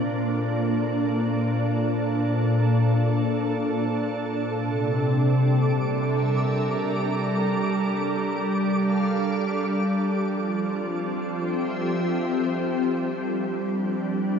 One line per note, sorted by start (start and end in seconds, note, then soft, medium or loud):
0.00 4.54 A#2 medium
0.00 5.59 A#3 medium
0.00 11.28 D4 medium
0.00 1.09 F4 medium
0.00 14.39 A4 medium
0.00 5.67 C5 medium
4.53 7.36 C3 medium
4.53 14.39 D6 medium
5.03 10.18 G3 medium
5.81 10.17 A#4 medium
5.81 7.36 E5 medium
8.62 10.17 F5 medium
10.18 12.98 F3 medium
10.69 14.11 C4 medium
11.27 14.10 G4 medium
11.42 12.97 E5 medium
12.97 14.39 G3 medium
13.33 14.39 D4 medium
14.24 14.39 A#4 medium
14.24 14.39 F5 medium